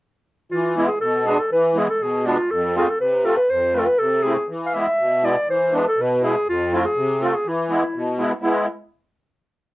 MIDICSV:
0, 0, Header, 1, 3, 480
1, 0, Start_track
1, 0, Tempo, 495458
1, 492, Time_signature, 2, 2, 24, 8
1, 9440, End_track
2, 0, Start_track
2, 0, Title_t, "Clarinet"
2, 0, Program_c, 0, 71
2, 494, Note_on_c, 0, 65, 73
2, 716, Note_off_c, 0, 65, 0
2, 741, Note_on_c, 0, 64, 63
2, 844, Note_off_c, 0, 64, 0
2, 850, Note_on_c, 0, 68, 76
2, 962, Note_off_c, 0, 68, 0
2, 977, Note_on_c, 0, 69, 83
2, 1224, Note_on_c, 0, 68, 87
2, 1238, Note_off_c, 0, 69, 0
2, 1351, Note_on_c, 0, 69, 74
2, 1366, Note_off_c, 0, 68, 0
2, 1462, Note_off_c, 0, 69, 0
2, 1474, Note_on_c, 0, 71, 87
2, 1723, Note_on_c, 0, 68, 63
2, 1738, Note_off_c, 0, 71, 0
2, 1828, Note_off_c, 0, 68, 0
2, 1837, Note_on_c, 0, 69, 86
2, 1959, Note_on_c, 0, 68, 76
2, 1973, Note_off_c, 0, 69, 0
2, 2192, Note_on_c, 0, 65, 82
2, 2207, Note_off_c, 0, 68, 0
2, 2430, Note_on_c, 0, 69, 90
2, 2444, Note_off_c, 0, 65, 0
2, 2662, Note_off_c, 0, 69, 0
2, 2682, Note_on_c, 0, 68, 84
2, 2806, Note_on_c, 0, 69, 84
2, 2821, Note_off_c, 0, 68, 0
2, 2907, Note_off_c, 0, 69, 0
2, 2913, Note_on_c, 0, 71, 87
2, 3147, Note_on_c, 0, 69, 87
2, 3161, Note_off_c, 0, 71, 0
2, 3253, Note_off_c, 0, 69, 0
2, 3258, Note_on_c, 0, 71, 94
2, 3393, Note_on_c, 0, 72, 93
2, 3408, Note_off_c, 0, 71, 0
2, 3633, Note_on_c, 0, 69, 83
2, 3648, Note_off_c, 0, 72, 0
2, 3735, Note_on_c, 0, 71, 89
2, 3750, Note_off_c, 0, 69, 0
2, 3859, Note_on_c, 0, 69, 98
2, 3874, Note_off_c, 0, 71, 0
2, 4094, Note_on_c, 0, 68, 78
2, 4109, Note_off_c, 0, 69, 0
2, 4340, Note_off_c, 0, 68, 0
2, 4510, Note_on_c, 0, 77, 64
2, 4586, Note_on_c, 0, 76, 86
2, 4601, Note_off_c, 0, 77, 0
2, 5086, Note_on_c, 0, 74, 85
2, 5100, Note_off_c, 0, 76, 0
2, 5319, Note_off_c, 0, 74, 0
2, 5328, Note_on_c, 0, 72, 82
2, 5573, Note_on_c, 0, 71, 84
2, 5587, Note_off_c, 0, 72, 0
2, 5683, Note_off_c, 0, 71, 0
2, 5699, Note_on_c, 0, 69, 89
2, 5823, Note_on_c, 0, 71, 95
2, 5838, Note_off_c, 0, 69, 0
2, 6037, Note_off_c, 0, 71, 0
2, 6043, Note_on_c, 0, 68, 82
2, 6263, Note_off_c, 0, 68, 0
2, 6288, Note_on_c, 0, 65, 88
2, 6523, Note_on_c, 0, 64, 66
2, 6537, Note_off_c, 0, 65, 0
2, 6627, Note_off_c, 0, 64, 0
2, 6633, Note_on_c, 0, 68, 84
2, 6995, Note_on_c, 0, 69, 81
2, 7010, Note_off_c, 0, 68, 0
2, 7119, Note_on_c, 0, 68, 74
2, 7133, Note_off_c, 0, 69, 0
2, 7249, Note_on_c, 0, 64, 67
2, 7263, Note_off_c, 0, 68, 0
2, 7958, Note_off_c, 0, 64, 0
2, 8178, Note_on_c, 0, 64, 69
2, 8404, Note_off_c, 0, 64, 0
2, 9440, End_track
3, 0, Start_track
3, 0, Title_t, "Accordion"
3, 0, Program_c, 1, 21
3, 505, Note_on_c, 1, 52, 62
3, 747, Note_on_c, 1, 56, 55
3, 747, Note_on_c, 1, 64, 72
3, 748, Note_on_c, 1, 59, 49
3, 856, Note_off_c, 1, 52, 0
3, 859, Note_off_c, 1, 56, 0
3, 859, Note_off_c, 1, 64, 0
3, 860, Note_off_c, 1, 59, 0
3, 984, Note_on_c, 1, 47, 66
3, 1217, Note_on_c, 1, 56, 56
3, 1218, Note_on_c, 1, 59, 53
3, 1221, Note_on_c, 1, 62, 63
3, 1334, Note_off_c, 1, 56, 0
3, 1335, Note_off_c, 1, 47, 0
3, 1335, Note_off_c, 1, 59, 0
3, 1336, Note_off_c, 1, 62, 0
3, 1466, Note_on_c, 1, 52, 69
3, 1699, Note_on_c, 1, 56, 57
3, 1700, Note_on_c, 1, 64, 70
3, 1702, Note_on_c, 1, 59, 59
3, 1815, Note_off_c, 1, 56, 0
3, 1816, Note_off_c, 1, 64, 0
3, 1817, Note_off_c, 1, 52, 0
3, 1817, Note_off_c, 1, 59, 0
3, 1940, Note_on_c, 1, 47, 59
3, 2182, Note_on_c, 1, 59, 58
3, 2183, Note_on_c, 1, 62, 72
3, 2185, Note_on_c, 1, 56, 57
3, 2294, Note_off_c, 1, 47, 0
3, 2298, Note_off_c, 1, 59, 0
3, 2298, Note_off_c, 1, 62, 0
3, 2299, Note_off_c, 1, 56, 0
3, 2429, Note_on_c, 1, 41, 64
3, 2668, Note_on_c, 1, 57, 65
3, 2668, Note_on_c, 1, 60, 55
3, 2674, Note_on_c, 1, 65, 74
3, 2780, Note_off_c, 1, 41, 0
3, 2782, Note_off_c, 1, 57, 0
3, 2782, Note_off_c, 1, 60, 0
3, 2785, Note_off_c, 1, 65, 0
3, 2905, Note_on_c, 1, 48, 60
3, 3150, Note_on_c, 1, 57, 55
3, 3150, Note_on_c, 1, 65, 66
3, 3151, Note_on_c, 1, 60, 50
3, 3260, Note_off_c, 1, 48, 0
3, 3264, Note_off_c, 1, 57, 0
3, 3264, Note_off_c, 1, 60, 0
3, 3264, Note_off_c, 1, 65, 0
3, 3390, Note_on_c, 1, 41, 57
3, 3629, Note_on_c, 1, 57, 61
3, 3631, Note_on_c, 1, 60, 52
3, 3632, Note_on_c, 1, 65, 64
3, 3744, Note_off_c, 1, 41, 0
3, 3745, Note_off_c, 1, 57, 0
3, 3746, Note_off_c, 1, 60, 0
3, 3746, Note_off_c, 1, 65, 0
3, 3872, Note_on_c, 1, 48, 65
3, 4109, Note_on_c, 1, 60, 47
3, 4110, Note_on_c, 1, 57, 49
3, 4111, Note_on_c, 1, 64, 66
3, 4226, Note_off_c, 1, 48, 0
3, 4227, Note_off_c, 1, 57, 0
3, 4227, Note_off_c, 1, 60, 0
3, 4227, Note_off_c, 1, 64, 0
3, 4348, Note_on_c, 1, 52, 58
3, 4603, Note_on_c, 1, 59, 62
3, 4605, Note_on_c, 1, 64, 60
3, 4606, Note_on_c, 1, 56, 62
3, 4705, Note_off_c, 1, 52, 0
3, 4715, Note_off_c, 1, 59, 0
3, 4716, Note_off_c, 1, 56, 0
3, 4716, Note_off_c, 1, 64, 0
3, 4832, Note_on_c, 1, 47, 59
3, 5065, Note_on_c, 1, 59, 51
3, 5067, Note_on_c, 1, 56, 52
3, 5071, Note_on_c, 1, 64, 66
3, 5188, Note_off_c, 1, 56, 0
3, 5188, Note_off_c, 1, 59, 0
3, 5189, Note_off_c, 1, 47, 0
3, 5191, Note_off_c, 1, 64, 0
3, 5307, Note_on_c, 1, 52, 58
3, 5545, Note_on_c, 1, 62, 66
3, 5550, Note_on_c, 1, 59, 51
3, 5553, Note_on_c, 1, 56, 58
3, 5667, Note_off_c, 1, 52, 0
3, 5669, Note_off_c, 1, 62, 0
3, 5671, Note_off_c, 1, 59, 0
3, 5673, Note_off_c, 1, 56, 0
3, 5786, Note_on_c, 1, 47, 69
3, 6030, Note_on_c, 1, 64, 66
3, 6031, Note_on_c, 1, 59, 53
3, 6032, Note_on_c, 1, 56, 55
3, 6148, Note_off_c, 1, 47, 0
3, 6152, Note_off_c, 1, 64, 0
3, 6153, Note_off_c, 1, 56, 0
3, 6153, Note_off_c, 1, 59, 0
3, 6267, Note_on_c, 1, 41, 62
3, 6511, Note_on_c, 1, 60, 60
3, 6512, Note_on_c, 1, 57, 60
3, 6514, Note_on_c, 1, 65, 73
3, 6628, Note_off_c, 1, 41, 0
3, 6633, Note_off_c, 1, 57, 0
3, 6633, Note_off_c, 1, 60, 0
3, 6635, Note_off_c, 1, 65, 0
3, 6746, Note_on_c, 1, 48, 64
3, 6983, Note_on_c, 1, 60, 52
3, 6987, Note_on_c, 1, 65, 62
3, 6988, Note_on_c, 1, 57, 52
3, 7107, Note_off_c, 1, 48, 0
3, 7109, Note_off_c, 1, 60, 0
3, 7111, Note_off_c, 1, 57, 0
3, 7111, Note_off_c, 1, 65, 0
3, 7221, Note_on_c, 1, 52, 70
3, 7454, Note_on_c, 1, 59, 52
3, 7455, Note_on_c, 1, 56, 58
3, 7462, Note_on_c, 1, 64, 68
3, 7583, Note_off_c, 1, 52, 0
3, 7584, Note_off_c, 1, 56, 0
3, 7584, Note_off_c, 1, 59, 0
3, 7588, Note_off_c, 1, 64, 0
3, 7694, Note_on_c, 1, 47, 67
3, 7925, Note_on_c, 1, 56, 73
3, 7934, Note_on_c, 1, 59, 64
3, 7934, Note_on_c, 1, 64, 75
3, 8057, Note_off_c, 1, 47, 0
3, 8057, Note_off_c, 1, 56, 0
3, 8062, Note_off_c, 1, 59, 0
3, 8062, Note_off_c, 1, 64, 0
3, 8158, Note_on_c, 1, 64, 69
3, 8161, Note_on_c, 1, 59, 59
3, 8166, Note_on_c, 1, 56, 72
3, 8394, Note_off_c, 1, 64, 0
3, 8395, Note_off_c, 1, 59, 0
3, 8398, Note_off_c, 1, 56, 0
3, 9440, End_track
0, 0, End_of_file